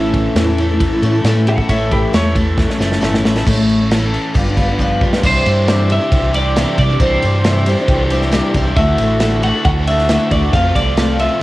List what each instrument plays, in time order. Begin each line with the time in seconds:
Already playing: fingered electric bass A1, twelve-string acoustic guitar A2 E3 A3 C#4 E4 A4, overdriven electric guitar E3 A3 C#4 E4, tonewheel organ A3 C#4 E4, clean electric guitar E4
0.13 overdriven electric guitar E3, kick, ride
0.35 fingered electric bass E2, twelve-string acoustic guitar A2 E3 A3 C#4 E4 A4, snare, ride
0.47 twelve-string acoustic guitar A3 C#4 E4 A4
0.58 twelve-string acoustic guitar A3 C#4 E4, ride
0.62 twelve-string acoustic guitar A4
0.71 twelve-string acoustic guitar A3 C#4 E4 A4
0.80 overdriven electric guitar E3, kick, ride
0.92 twelve-string acoustic guitar A3 C#4 E4 A4
1.02 fingered electric bass A2, twelve-string acoustic guitar A3 C#4 E4 A4, ride
1.15 twelve-string acoustic guitar A3 C#4 E4 A4
1.24 fingered electric bass A2, twelve-string acoustic guitar A2 E3 A3 C#4 E4 A4, snare, ride
1.47 twelve-string acoustic guitar A3 C#4 E4, clean electric guitar A4 F#5, ride
1.58 twelve-string acoustic guitar A3 C#4 E4 A4, kick
1.69 fingered electric bass A1, twelve-string acoustic guitar A2 E3 A3 C#4 E4 A4, clean electric guitar C#5 E5, kick, ride
1.91 overdriven electric guitar E3, clean electric guitar G4 B4, kick, ride
2.13 fingered electric bass E2, twelve-string acoustic guitar A2 E3 A3 C#4 E4 A4, clean electric guitar C#5, snare, ride
2.23 twelve-string acoustic guitar A3 C#4 E4 A4
2.35 twelve-string acoustic guitar A3 C#4 E4 A4, kick, ride
2.58 overdriven electric guitar E3, kick, snare
2.68 twelve-string acoustic guitar A3 C#4 E4 A4, snare
2.78 fingered electric bass F#1, twelve-string acoustic guitar A3 C#4 E4 A4, snare
2.92 snare
3.01 fingered electric bass G1, twelve-string acoustic guitar A2 E3 A3 C#4 E4 A4, snare
3.14 snare
3.23 fingered electric bass A1, twelve-string acoustic guitar A3 C#4 E4 A4, snare
3.36 twelve-string acoustic guitar A3 C#4 E4 A4, snare
3.45 fingered electric bass A1, twelve-string acoustic guitar A2 E3 A3 C#4 E4 A4, tonewheel organ A3 C#4 E4 A4, kick, crash
3.69 crash
3.79 twelve-string acoustic guitar A3 C#4 E4 A4
3.91 twelve-string acoustic guitar A2 E3 A3 C#4 E4 A4, snare, crash
4.03 twelve-string acoustic guitar A3 C#4 E4 A4
4.12 overdriven electric guitar A3, crash
4.34 fingered electric bass G1, overdriven electric guitar G2, twelve-string acoustic guitar G3 D4 F4 B4, tonewheel organ B3 D4 F4 G4, kick, crash
4.46 twelve-string acoustic guitar D4 F4 B4
4.57 twelve-string acoustic guitar G3 D4 F4, overdriven electric guitar B3, kick, crash
4.61 twelve-string acoustic guitar B4
4.69 twelve-string acoustic guitar D4 F4 B4
4.79 overdriven electric guitar F3, twelve-string acoustic guitar G3 D4 F4 B4, kick
5.01 twelve-string acoustic guitar G3 D4 F4 B4, kick
5.13 twelve-string acoustic guitar D4 F4 B4, snare
5.23 fingered electric bass C2, twelve-string acoustic guitar C3 E3 G3 D4 E4 C5, overdriven electric guitar C4 G4, tonewheel organ C4 D4 E4 G4, clean electric guitar C5, kick, crash
5.46 fingered electric bass G2, twelve-string acoustic guitar G3 D4 E4 C5, ride
5.68 twelve-string acoustic guitar C3 E3 G3 D4 E4 C5, snare, ride
5.89 twelve-string acoustic guitar G3 D4 E4 C5, overdriven electric guitar C4 G4, clean electric guitar E5, ride
6.00 twelve-string acoustic guitar G3 D4 E4 C5
6.10 fingered electric bass C2, overdriven electric guitar E3 G3 C4 G4, kick, ride
6.33 twelve-string acoustic guitar G3 D4 E4 C5, overdriven electric guitar C4 G4, clean electric guitar D5, ride
6.56 twelve-string acoustic guitar C3 E3 G3 D4 E4 C5, overdriven electric guitar C4 G4, snare, ride
6.77 fingered electric bass C3, twelve-string acoustic guitar G3 D4 E4 C5, overdriven electric guitar C4 G4, clean electric guitar D5, kick, ride
6.90 twelve-string acoustic guitar G3 D4 E4 C5
7.00 fingered electric bass C2, twelve-string acoustic guitar C3 E3 G3 D4 E4 C5, overdriven electric guitar C4 G4, clean electric guitar C5, kick, ride
7.22 fingered electric bass G2, twelve-string acoustic guitar G3 D4 E4 C5, ride
7.44 twelve-string acoustic guitar C3 E3 G3 D4 E4 C5, snare, ride
7.66 twelve-string acoustic guitar G3 D4 E4 C5, overdriven electric guitar C4 G4, ride
7.78 twelve-string acoustic guitar G3 D4 E4 C5
7.87 fingered electric bass C2, overdriven electric guitar E3 G3 C4 G4, kick, ride
8.10 twelve-string acoustic guitar G3 D4 E4 C5, overdriven electric guitar C4 G4, ride
8.22 snare
8.31 twelve-string acoustic guitar C3 E3 G3 D4 E4 C5, overdriven electric guitar C4 G4, snare, ride
8.54 fingered electric bass C2, twelve-string acoustic guitar G3 D4 E4 C5, overdriven electric guitar C4 G4, kick, ride
8.65 twelve-string acoustic guitar G3 D4 E4 C5
8.76 fingered electric bass D2, twelve-string acoustic guitar D3 A3 E4 F#4 A4, tonewheel organ A3 D4 E4 F#4, overdriven electric guitar D4, clean electric guitar E5, kick, ride
8.98 fingered electric bass A1, twelve-string acoustic guitar A3 E4 F#4, ride
9.03 twelve-string acoustic guitar A4
9.20 twelve-string acoustic guitar D3 A3 E4 F#4 A4, snare, ride
9.42 twelve-string acoustic guitar A3 E4 F#4 A4, overdriven electric guitar D4, clean electric guitar F#5, ride
9.54 twelve-string acoustic guitar E4 F#4 A4
9.65 fingered electric bass D2, overdriven electric guitar D3 A3 D4 F#4, clean electric guitar F#5, kick, ride
9.87 twelve-string acoustic guitar A3 E4 F#4 A4, overdriven electric guitar D4, clean electric guitar E5, ride
9.98 snare
10.09 twelve-string acoustic guitar D3 A3 E4 F#4 A4, overdriven electric guitar D4, snare, ride
10.31 fingered electric bass D2, twelve-string acoustic guitar A3 E4 F#4 A4, overdriven electric guitar D4, clean electric guitar D5, kick, ride
10.42 twelve-string acoustic guitar E4 F#4 A4
10.53 overdriven electric guitar F2 C3, fingered electric bass F2, twelve-string acoustic guitar F3 A3 C4 F4 A4, tonewheel organ A3 C4 F4 A4, clean electric guitar F5, kick, ride
10.75 fingered electric bass C2, twelve-string acoustic guitar A3 C4 F4 A4, clean electric guitar D5, kick, ride
10.97 twelve-string acoustic guitar F3 A3 C4 F4 A4, snare, ride
11.18 overdriven electric guitar F3, twelve-string acoustic guitar A3 C4 F4 A4, clean electric guitar E5, ride
11.30 twelve-string acoustic guitar C4 F4 A4